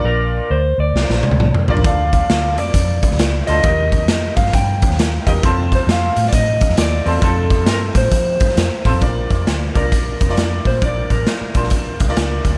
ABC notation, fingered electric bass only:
X:1
M:4/4
L:1/16
Q:"Swing" 1/4=134
K:Bb
V:1 name="Fingered electric bass" clef=bass
B,,,4 D,,2 D,,2 C,, B,,, z D,, C,, z B,,, A,,, | D,,4 D,,2 F,,2 F,,3 D,, _D,,2 =D,,2 | E,,4 F,,2 G,,2 G,,3 E,,3 =E,,2 | F,,4 F,,2 A,,2 A,,3 F,, E,,2 =E,,2 |
F,,4 G,,2 A,,2 F,2 G,,2 F,, z A,, F,, | B,,,2 F,,2 D,,2 C,,2 B,,,2 F,,,2 F,,2 B,,2 | B,,,2 A,,,2 z2 B,,,2 z2 C,,2 _D,,2 =D,,2 |]